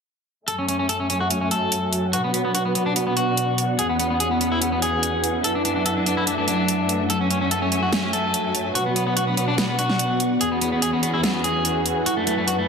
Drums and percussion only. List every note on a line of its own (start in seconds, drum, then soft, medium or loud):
0.48 closed hi-hat medium
0.68 closed hi-hat soft
0.89 closed hi-hat medium
1.10 closed hi-hat soft
1.30 closed hi-hat medium
1.51 closed hi-hat soft
1.72 closed hi-hat medium
1.93 closed hi-hat soft
2.13 closed hi-hat medium
2.34 closed hi-hat soft
2.55 closed hi-hat medium
2.75 closed hi-hat soft
2.96 closed hi-hat medium
3.17 closed hi-hat soft
3.37 closed hi-hat medium
3.58 closed hi-hat soft
3.79 closed hi-hat medium
4.00 closed hi-hat soft
4.20 closed hi-hat medium
4.41 closed hi-hat soft
4.62 closed hi-hat medium
4.82 closed hi-hat soft
5.03 closed hi-hat medium
5.24 closed hi-hat soft
5.44 closed hi-hat medium
5.65 closed hi-hat soft
5.86 closed hi-hat medium
6.06 closed hi-hat soft
6.27 closed hi-hat medium
6.48 closed hi-hat soft
6.68 closed hi-hat medium
6.89 closed hi-hat soft
7.10 closed hi-hat medium
7.30 closed hi-hat soft
7.51 closed hi-hat medium
7.72 closed hi-hat soft
7.93 snare loud
7.93 closed hi-hat medium
8.13 closed hi-hat soft
8.34 closed hi-hat medium
8.55 closed hi-hat soft
8.75 closed hi-hat medium
8.96 closed hi-hat soft
9.17 closed hi-hat medium
9.37 closed hi-hat soft
9.58 snare loud
9.58 closed hi-hat medium
9.79 closed hi-hat soft
9.89 snare soft
9.99 closed hi-hat medium
10.20 closed hi-hat soft
10.41 closed hi-hat medium
10.61 closed hi-hat soft
10.82 closed hi-hat medium
11.03 closed hi-hat soft
11.24 snare loud
11.24 closed hi-hat medium
11.44 closed hi-hat soft
11.65 closed hi-hat medium
11.86 closed hi-hat medium
12.06 closed hi-hat medium
12.27 closed hi-hat soft
12.48 closed hi-hat medium